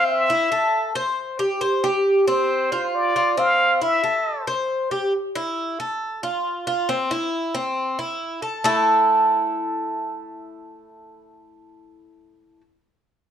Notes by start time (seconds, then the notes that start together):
Already playing: C4 F5
0.09 E5
0.30 E4
0.52 A4
0.95 C5
1.39 G4
1.61 C5
1.84 G4
2.28 C4 C5
2.72 F4
2.95 D5
3.16 F4
3.38 C4 F5
3.81 E4 E5
4.04 A4
4.47 C5
4.91 G4
5.35 E4
5.80 A4
6.23 F4
6.67 F4
6.89 C4
7.11 E4
7.54 C4
7.99 E4
8.42 A4
8.64 A3 E4 A4